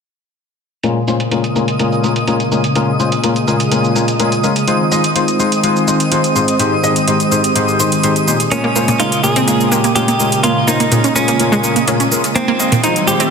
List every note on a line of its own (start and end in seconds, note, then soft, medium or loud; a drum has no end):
0.83 0.96 A#2 medium
0.83 4.64 C#3 medium
0.83 0.96 G#3 medium
0.83 12.32 G#3 medium
0.83 4.64 A#3 medium
0.83 0.96 C#4 medium
0.83 6.56 F4 medium
0.83 0.96 F4 medium
0.83 0.96 A#4 medium
0.83 2.74 A#4 medium
0.83 13.30 D#5 medium
0.83 13.30 D#6 medium
0.83 closed hi-hat medium
0.83 shaker soft
1.08 1.15 A#2 medium
1.08 1.15 G#3 medium
1.08 1.15 C#4 medium
1.08 1.15 F4 medium
1.08 1.15 C5 medium
1.08 shaker medium
1.20 closed hi-hat medium
1.20 shaker soft
1.31 1.39 A#2 medium
1.31 1.39 G#3 medium
1.31 1.39 C#4 medium
1.31 1.39 F4 medium
1.31 1.39 A#4 medium
1.31 closed hi-hat medium
1.31 shaker soft
1.44 closed hi-hat soft
1.44 shaker soft
1.56 1.63 A#2 medium
1.56 1.63 G#3 medium
1.56 1.63 C#4 medium
1.56 1.63 F4 medium
1.56 1.63 A#4 medium
1.56 shaker medium
1.68 closed hi-hat medium
1.68 shaker soft
1.79 2.01 A#2 medium
1.79 2.01 G#3 medium
1.79 2.01 C#4 medium
1.79 2.01 F4 medium
1.79 2.01 A#4 medium
1.79 closed hi-hat medium
1.79 shaker soft
1.92 shaker soft
2.04 2.11 A#2 medium
2.04 2.11 G#3 medium
2.04 2.11 C#4 medium
2.04 2.11 F4 medium
2.04 2.11 A#4 medium
2.04 shaker medium
2.16 closed hi-hat soft
2.16 shaker soft
2.28 2.35 A#2 medium
2.28 2.35 G#3 medium
2.28 2.35 C#4 medium
2.28 2.35 F4 medium
2.28 2.35 A#4 medium
2.28 closed hi-hat medium
2.28 shaker soft
2.40 closed hi-hat soft
2.40 shaker soft
2.52 2.59 A#2 medium
2.52 2.59 G#3 medium
2.52 2.59 C#4 medium
2.52 2.59 F4 medium
2.52 2.59 A#4 medium
2.52 shaker medium
2.64 closed hi-hat soft
2.64 shaker soft
2.75 2.88 A#2 medium
2.75 2.88 G#3 medium
2.75 2.88 C#4 medium
2.75 2.88 F4 medium
2.75 4.66 G#4 medium
2.75 2.88 A#4 medium
2.75 closed hi-hat medium
2.75 shaker soft
3.00 3.07 A#2 medium
3.00 3.07 G#3 medium
3.00 3.07 C#4 medium
3.00 3.07 F4 medium
3.00 3.07 C5 medium
3.00 shaker medium
3.12 closed hi-hat soft
3.12 shaker soft
3.24 3.31 A#2 medium
3.24 3.31 G#3 medium
3.24 3.31 C#4 medium
3.24 3.31 F4 medium
3.24 3.31 A#4 medium
3.24 closed hi-hat medium
3.24 shaker soft
3.36 closed hi-hat soft
3.36 shaker soft
3.48 3.55 A#2 medium
3.48 3.55 G#3 medium
3.48 3.55 C#4 medium
3.48 3.55 F4 medium
3.48 3.55 A#4 medium
3.48 shaker medium
3.60 closed hi-hat medium
3.60 shaker soft
3.71 3.93 A#2 medium
3.71 3.93 G#3 medium
3.71 3.93 C#4 medium
3.71 3.93 F4 medium
3.71 3.93 A#4 medium
3.71 closed hi-hat medium
3.71 shaker soft
3.84 shaker soft
3.96 4.03 A#2 medium
3.96 4.03 G#3 medium
3.96 4.03 C#4 medium
3.96 4.03 F4 medium
3.96 4.03 A#4 medium
3.96 shaker medium
4.08 closed hi-hat soft
4.08 shaker soft
4.20 4.27 A#2 medium
4.20 4.27 G#3 medium
4.20 4.27 C#4 medium
4.20 4.27 F4 medium
4.20 4.27 A#4 medium
4.20 closed hi-hat medium
4.20 shaker soft
4.32 closed hi-hat soft
4.32 shaker soft
4.43 4.51 G#3 medium
4.43 4.51 C#4 medium
4.43 4.51 F4 medium
4.43 4.51 A#4 medium
4.43 shaker medium
4.56 closed hi-hat soft
4.56 shaker soft
4.68 6.58 D#3 medium
4.68 4.80 G#3 medium
4.68 8.48 C4 medium
4.68 4.80 D#4 medium
4.68 4.80 F4 medium
4.68 4.80 C5 medium
4.68 8.48 C5 medium
4.68 closed hi-hat medium
4.68 shaker soft
4.92 4.99 G#3 medium
4.92 4.99 D#4 medium
4.92 4.99 F4 medium
4.92 4.99 D#5 medium
4.92 shaker medium
5.04 closed hi-hat soft
5.04 shaker soft
5.16 5.23 G#3 medium
5.16 5.23 D#4 medium
5.16 5.23 F4 medium
5.16 5.23 C5 medium
5.16 closed hi-hat medium
5.16 shaker soft
5.28 closed hi-hat soft
5.28 shaker soft
5.40 5.47 G#3 medium
5.40 5.47 D#4 medium
5.40 5.47 F4 medium
5.40 5.47 C5 medium
5.40 shaker medium
5.52 closed hi-hat soft
5.52 shaker soft
5.64 5.85 G#3 medium
5.64 5.85 D#4 medium
5.64 5.85 F4 medium
5.64 5.85 C5 medium
5.64 closed hi-hat medium
5.64 shaker soft
5.76 shaker soft
5.88 5.95 G#3 medium
5.88 5.95 D#4 medium
5.88 5.95 F4 medium
5.88 5.95 C5 medium
5.88 shaker medium
6.00 closed hi-hat soft
6.00 shaker soft
6.11 6.19 G#3 medium
6.11 6.19 D#4 medium
6.11 6.19 F4 medium
6.11 6.19 C5 medium
6.11 closed hi-hat medium
6.11 shaker soft
6.24 closed hi-hat soft
6.24 shaker soft
6.35 6.43 G#2 medium
6.35 6.43 G#3 medium
6.35 6.43 D#4 medium
6.35 6.43 F4 medium
6.35 6.43 C5 medium
6.35 shaker medium
6.48 closed hi-hat soft
6.48 shaker soft
6.59 6.72 G#2 medium
6.59 8.50 D#3 medium
6.59 6.72 G#3 medium
6.59 6.72 D#4 medium
6.59 6.72 G4 medium
6.59 8.50 G4 medium
6.59 6.72 C5 medium
6.59 closed hi-hat medium
6.59 shaker soft
6.83 6.91 G#2 medium
6.83 6.91 G#3 medium
6.83 6.91 D#4 medium
6.83 6.91 G4 medium
6.83 6.91 D#5 medium
6.83 shaker medium
6.96 closed hi-hat soft
6.96 shaker soft
7.07 7.15 G#2 medium
7.07 7.15 G#3 medium
7.07 7.15 D#4 medium
7.07 7.15 G4 medium
7.07 7.15 C5 medium
7.07 closed hi-hat medium
7.07 shaker soft
7.20 closed hi-hat soft
7.20 shaker soft
7.31 7.39 G#2 medium
7.31 7.39 G#3 medium
7.31 7.39 D#4 medium
7.31 7.39 G4 medium
7.31 7.39 C5 medium
7.31 shaker medium
7.44 closed hi-hat soft
7.44 shaker soft
7.55 7.77 G#2 medium
7.55 7.77 G#3 medium
7.55 7.77 D#4 medium
7.55 7.77 G4 medium
7.55 7.77 C5 medium
7.55 closed hi-hat medium
7.55 shaker soft
7.68 shaker soft
7.80 7.87 G#2 medium
7.80 7.87 G#3 medium
7.80 7.87 D#4 medium
7.80 7.87 G4 medium
7.80 7.87 C5 medium
7.80 shaker medium
7.92 closed hi-hat soft
7.92 shaker soft
8.03 8.11 G#2 medium
8.03 8.11 G#3 medium
8.03 8.11 D#4 medium
8.03 8.11 G4 medium
8.03 8.11 C5 medium
8.03 closed hi-hat medium
8.03 shaker soft
8.16 closed hi-hat soft
8.16 shaker soft
8.28 8.35 A#2 medium
8.28 8.35 G#3 medium
8.28 8.35 D#4 medium
8.28 8.35 G4 medium
8.28 8.35 C5 medium
8.28 shaker medium
8.40 closed hi-hat soft
8.40 shaker soft
8.52 8.64 A#2 medium
8.52 12.32 C#3 medium
8.52 8.64 G#3 medium
8.52 8.58 A#3 medium
8.52 12.32 A#3 medium
8.52 8.64 C#4 medium
8.52 9.01 C#4 loud
8.52 8.64 F4 medium
8.52 13.30 F4 medium
8.52 8.64 A#4 medium
8.52 12.32 A#4 medium
8.52 closed hi-hat medium
8.52 shaker soft
8.64 8.67 A#3 loud
8.76 8.83 A#2 medium
8.76 8.83 G#3 medium
8.76 8.82 A#3 medium
8.76 8.83 C#4 medium
8.76 8.83 F4 medium
8.76 8.83 C5 medium
8.76 shaker medium
8.88 8.91 A#2 loud
8.88 closed hi-hat soft
8.88 shaker soft
9.00 9.07 A#2 medium
9.00 9.07 G#3 medium
9.00 9.07 C#4 medium
9.00 9.03 D#4 medium
9.00 9.07 F4 medium
9.00 9.23 F4 loud
9.00 9.07 A#4 medium
9.00 closed hi-hat medium
9.00 shaker soft
9.12 closed hi-hat soft
9.12 shaker soft
9.24 9.31 A#2 medium
9.24 9.31 G#3 medium
9.24 9.31 C#4 medium
9.24 9.31 F4 medium
9.24 9.71 G#4 loud
9.24 9.31 A#4 medium
9.24 shaker medium
9.36 9.42 C4 loud
9.36 closed hi-hat soft
9.36 shaker soft
9.48 9.69 A#2 medium
9.48 9.69 G#3 medium
9.48 9.54 A#3 medium
9.48 9.69 C#4 medium
9.48 9.69 F4 medium
9.48 9.69 A#4 medium
9.48 closed hi-hat medium
9.48 shaker soft
9.60 shaker soft
9.71 9.79 A#2 medium
9.71 9.79 G#3 medium
9.71 9.75 A#3 medium
9.71 9.79 C#4 medium
9.71 9.79 F4 medium
9.71 9.92 G4 loud
9.71 9.79 A#4 medium
9.71 shaker medium
9.84 9.87 A#3 medium
9.84 closed hi-hat soft
9.84 shaker soft
9.96 10.03 A#2 medium
9.96 10.03 G#3 medium
9.96 10.03 C#4 medium
9.96 10.03 F4 medium
9.96 10.40 G4 medium
9.96 10.03 A#4 medium
9.96 closed hi-hat medium
9.96 shaker soft
10.08 10.11 A#3 medium
10.08 closed hi-hat soft
10.08 shaker soft
10.20 10.27 A#2 medium
10.20 10.27 G#3 medium
10.20 10.27 C#4 medium
10.20 10.27 F4 medium
10.20 10.27 A#4 medium
10.20 shaker medium
10.32 closed hi-hat soft
10.32 shaker soft
10.43 10.56 A#2 medium
10.43 10.56 G#3 medium
10.43 10.50 A#3 medium
10.43 10.56 C#4 medium
10.43 10.68 F4 loud
10.43 10.56 F4 medium
10.43 10.56 A#4 medium
10.43 closed hi-hat medium
10.43 shaker soft
10.68 10.75 A#2 medium
10.68 10.75 G#3 medium
10.68 10.71 A#3 medium
10.68 10.75 C#4 medium
10.68 11.15 D#4 medium
10.68 10.75 F4 medium
10.68 10.75 C5 medium
10.68 shaker medium
10.80 10.83 A#3 medium
10.80 closed hi-hat soft
10.80 shaker soft
10.92 10.99 A#2 medium
10.92 10.98 A#2 medium
10.92 10.99 G#3 medium
10.92 10.99 C#4 medium
10.92 10.99 F4 medium
10.92 10.99 A#4 medium
10.92 closed hi-hat medium
10.92 shaker soft
11.04 11.10 C#4 medium
11.04 closed hi-hat soft
11.04 shaker soft
11.16 11.23 A#2 medium
11.16 11.23 G#3 medium
11.16 11.84 C#4 medium
11.16 11.23 C#4 medium
11.16 11.23 F4 medium
11.16 11.23 A#4 medium
11.16 11.22 A#4 medium
11.16 shaker medium
11.28 11.34 A#3 medium
11.28 closed hi-hat medium
11.28 shaker soft
11.40 11.61 A#2 medium
11.40 11.61 G#3 medium
11.40 11.61 C#4 medium
11.40 11.61 F4 medium
11.40 11.61 A#4 medium
11.40 closed hi-hat medium
11.40 shaker soft
11.52 11.58 G#3 loud
11.52 shaker soft
11.64 11.71 A#2 medium
11.64 11.71 G#3 medium
11.64 11.71 C#4 medium
11.64 11.71 F4 medium
11.64 11.71 A#4 medium
11.64 shaker medium
11.76 11.79 A#3 medium
11.76 closed hi-hat soft
11.76 shaker soft
11.88 11.95 A#2 medium
11.88 11.95 G#3 medium
11.88 11.95 C#4 medium
11.88 11.91 C#4 medium
11.88 11.95 F4 medium
11.88 11.95 A#4 medium
11.88 closed hi-hat medium
11.88 shaker soft
12.00 12.06 C#4 medium
12.00 closed hi-hat soft
12.00 shaker soft
12.12 12.19 G#3 medium
12.12 12.19 C#4 medium
12.12 12.19 F4 medium
12.12 12.19 A#4 medium
12.12 shaker medium
12.24 closed hi-hat soft
12.24 shaker soft
12.35 13.30 D#3 medium
12.35 13.30 G#3 medium
12.35 12.48 G#3 medium
12.35 12.42 A#3 medium
12.35 13.30 C4 medium
12.35 12.83 C4 loud
12.35 12.48 D#4 medium
12.35 12.48 F4 medium
12.35 13.30 C5 medium
12.35 12.48 C5 medium
12.35 closed hi-hat medium
12.35 riser medium
12.35 shaker soft
12.48 12.51 A#3 loud
12.60 12.67 G#3 medium
12.60 12.65 A#3 medium
12.60 12.67 D#4 medium
12.60 12.67 F4 medium
12.60 12.67 D#5 medium
12.60 shaker medium
12.72 12.75 A#2 loud
12.72 closed hi-hat soft
12.72 shaker soft
12.84 12.91 G#3 medium
12.84 13.08 D#4 loud
12.84 12.91 D#4 medium
12.84 12.87 D#4 medium
12.84 12.91 F4 medium
12.84 12.91 C5 medium
12.84 closed hi-hat medium
12.84 shaker soft
12.96 closed hi-hat soft
12.96 shaker soft
13.07 13.15 G#3 medium
13.07 13.15 D#4 medium
13.07 13.15 F4 medium
13.07 13.30 G4 loud
13.07 13.15 C5 medium
13.07 shaker medium
13.20 13.26 C4 loud
13.20 closed hi-hat medium
13.20 shaker soft